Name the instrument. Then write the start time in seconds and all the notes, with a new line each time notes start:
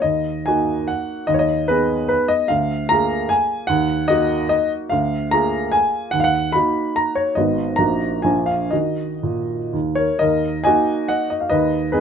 grand piano
0.02 D#2 D#5
0.46 A#3 D#4 F#4 G#5
0.88 F#5
1.27 D#2 D#5
1.34 C#5
1.39 D#5
1.68 B3 D#4 G#4 B4
2.09 B4
2.28 D#5
2.48 D2 F5
2.89 A#3 F4 G#4 A#5
3.29 G#5
3.67 D#2 F#5
4.08 A#3 D#4 F#4 D#5
4.49 D#5
4.89 D2 F5
5.31 A#3 F4 G#4 A#5
5.72 G#5
6.11 D#2 F#5
6.20 F5 F#5
6.52 A#3 D#4 F#4 B5
6.96 A#5
7.15 C#5
7.35 G#1 B3 D#4 F#4 D#5
7.76 A#1 A#3 D#4 F#4 A#5
8.22 A#1 A#3 D4 F4 G#5
8.46 F5
8.71 D#3 D#4 F#4 D#5
9.23 A#2
9.73 D#2
9.95 A#4 C#5
10.19 D#2 A#4 D#5
10.64 A#3 D#4 F#4 D#5 G#5
11.08 D#5 F#5
11.30 D#5
11.40 F5
11.50 D#2 B4 D#5
11.92 B3 D#4 G#4 B4